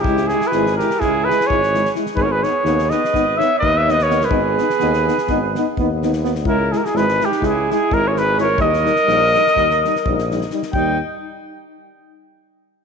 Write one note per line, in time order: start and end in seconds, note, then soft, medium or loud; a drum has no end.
0.00 0.29 E4 medium
0.00 0.29 G4 medium
0.04 0.33 C#2 medium
0.04 0.17 G#3 medium
0.04 kick medium
0.09 0.19 E4 medium
0.17 snare soft
0.27 0.53 E4 medium
0.27 0.48 G#4 medium
0.27 snare soft
0.33 0.41 G#3 medium
0.33 0.42 E4 medium
0.41 snare soft
0.47 0.76 B4 medium
0.52 0.81 G#1 loud
0.52 0.65 G#3 medium
0.52 0.65 E4 medium
0.52 0.77 G#4 medium
0.52 snare soft
0.66 snare soft
0.76 1.01 G4 medium
0.76 1.01 A#4 medium
0.76 snare soft
0.81 0.90 G#3 soft
0.81 0.91 E4 medium
0.90 snare soft
1.00 1.29 C#2 medium
1.00 1.13 G#3 medium
1.00 1.31 E4 medium
1.00 1.26 G#4 loud
1.00 kick medium
1.00 snare soft
1.05 1.15 E4 medium
1.25 1.49 B4 medium
1.29 1.38 G#3 soft
1.29 1.38 E4 medium
1.29 1.50 G#4 medium
1.29 snare soft
1.40 snare soft
1.47 1.87 G#1 medium
1.47 1.60 E4 medium
1.47 1.93 G#4 medium
1.47 1.92 C#5 medium
1.47 kick medium
1.52 1.61 G#3 medium
1.63 snare soft
1.74 1.84 G#3 medium
1.74 1.82 E4 medium
1.74 snare soft
1.85 snare soft
1.95 2.06 G#3 medium
1.95 2.04 E4 medium
1.95 snare soft
2.06 snare soft
2.14 2.43 G#1 medium
2.14 2.26 D#4 medium
2.14 2.27 G#4 medium
2.14 2.24 B4 loud
2.14 kick medium
2.20 2.30 B3 medium
2.20 2.33 C#5 medium
2.25 2.33 A#4 medium
2.31 2.45 G#4 medium
2.31 2.44 B4 medium
2.41 2.54 B3 medium
2.41 2.51 D#4 medium
2.41 2.94 G#4 medium
2.41 2.91 C#5 medium
2.41 snare soft
2.64 2.91 D#2 loud
2.64 2.77 B3 medium
2.64 2.76 D#4 medium
2.64 snare soft
2.79 snare soft
2.90 3.02 B3 medium
2.90 3.01 D#4 soft
2.90 3.40 B4 medium
2.90 3.38 D#5 medium
2.90 snare soft
3.04 snare soft
3.13 3.41 G#1 medium
3.13 3.25 B3 medium
3.13 3.24 D#4 medium
3.13 kick medium
3.13 snare soft
3.37 3.47 D#4 medium
3.37 3.60 C#5 medium
3.37 3.58 E5 loud
3.37 snare soft
3.41 3.50 B3 medium
3.59 4.32 D#2 loud
3.59 3.71 D#4 medium
3.59 3.83 B4 medium
3.59 3.79 D#5 loud
3.59 kick medium
3.64 3.74 B3 medium
3.77 3.92 E5 medium
3.82 3.95 C#5 medium
3.86 3.96 B3 medium
3.86 3.95 D#4 medium
3.86 snare soft
3.91 4.08 B4 medium
3.91 4.04 D#5 loud
3.99 snare soft
4.03 4.26 C#5 medium
4.07 4.17 B3 medium
4.07 4.19 D#4 medium
4.07 4.32 A#4 medium
4.07 snare soft
4.21 snare soft
4.25 5.74 B4 medium
4.30 4.57 G#1 loud
4.30 4.41 B3 medium
4.30 4.42 D#4 medium
4.30 5.77 G#4 medium
4.30 kick medium
4.56 4.65 B3 medium
4.56 4.68 D#4 medium
4.56 snare soft
4.70 snare soft
4.79 5.08 D#2 loud
4.79 4.89 B3 medium
4.79 4.92 D#4 medium
4.79 snare soft
4.93 snare soft
5.07 5.15 B3 medium
5.07 5.17 D#4 medium
5.07 snare soft
5.18 snare soft
5.27 5.56 G#1 medium
5.27 5.40 B3 medium
5.27 5.40 D#4 medium
5.27 kick medium
5.27 snare soft
5.55 5.65 B3 medium
5.55 5.67 D#4 medium
5.55 snare soft
5.77 6.46 D#2 medium
5.77 5.88 B3 medium
5.77 5.90 D#4 medium
5.77 kick medium
6.02 6.12 B3 medium
6.02 6.12 D#4 medium
6.02 snare soft
6.13 snare soft
6.23 6.32 B3 medium
6.23 6.32 D#4 medium
6.23 snare soft
6.35 snare soft
6.45 6.72 C#2 medium
6.45 6.57 G#3 medium
6.45 6.56 E4 medium
6.45 6.76 E4 medium
6.45 6.74 A#4 medium
6.45 kick medium
6.72 6.82 G#3 medium
6.72 6.81 E4 medium
6.72 6.79 G#4 medium
6.72 snare soft
6.76 6.82 E4 medium
6.76 6.86 A#4 medium
6.81 6.91 G4 medium
6.81 6.98 G#4 medium
6.85 snare soft
6.89 7.03 E4 medium
6.94 7.21 G#1 loud
6.94 7.05 G#3 medium
6.94 7.05 E4 medium
6.94 7.26 B4 medium
6.94 snare soft
7.02 7.29 G#4 medium
7.08 snare soft
7.19 7.30 G#3 medium
7.19 7.28 E4 medium
7.19 snare soft
7.25 7.46 D#4 medium
7.25 7.45 G4 medium
7.32 snare soft
7.41 7.69 C#2 medium
7.41 7.52 G#3 medium
7.41 7.53 E4 medium
7.41 kick medium
7.41 snare soft
7.47 7.70 E4 medium
7.47 7.69 G#4 medium
7.69 7.78 G#3 medium
7.69 7.80 E4 medium
7.69 7.95 G#4 medium
7.69 snare soft
7.76 7.95 E4 medium
7.91 8.61 G#1 loud
7.91 8.01 G#3 medium
7.91 8.02 E4 medium
7.91 8.09 A#4 medium
7.91 kick medium
7.95 8.14 E4 medium
8.08 8.20 C#5 medium
8.13 8.23 G#3 medium
8.13 8.23 A#4 medium
8.13 snare soft
8.18 8.26 E4 medium
8.18 8.40 G#4 medium
8.18 8.39 B4 loud
8.37 8.46 G#3 medium
8.37 8.47 E4 medium
8.37 8.59 C#5 medium
8.37 snare soft
8.42 8.60 A#4 medium
8.57 8.87 D#2 medium
8.57 8.68 G3 medium
8.57 8.71 D#4 medium
8.57 kick medium
8.61 10.29 A#4 medium
8.61 10.29 D#5 loud
8.73 snare soft
8.84 8.93 G3 medium
8.84 8.94 D#4 medium
8.84 snare soft
8.96 snare soft
9.06 9.35 A#1 loud
9.06 9.17 G3 medium
9.06 9.18 D#4 medium
9.06 snare soft
9.33 9.42 G3 medium
9.33 9.43 D#4 medium
9.33 snare soft
9.47 snare soft
9.55 9.84 D#2 medium
9.55 9.67 G3 medium
9.55 9.69 D#4 medium
9.55 kick medium
9.55 snare soft
9.70 snare soft
9.84 9.93 G3 medium
9.84 9.95 D#4 medium
9.84 snare soft
9.96 snare soft
10.05 10.43 A#1 medium
10.05 10.18 G3 soft
10.05 10.18 D#4 medium
10.05 kick medium
10.18 snare soft
10.30 10.41 G3 medium
10.30 10.39 D#4 medium
10.30 snare soft
10.41 snare soft
10.50 10.62 G3 medium
10.50 10.61 D#4 medium
10.50 snare soft
10.62 snare soft
10.73 11.00 D#2 medium
10.73 10.99 G3 medium
10.73 10.99 D#4 medium
10.73 11.00 D#4 medium
10.73 10.99 G5 medium
10.73 kick medium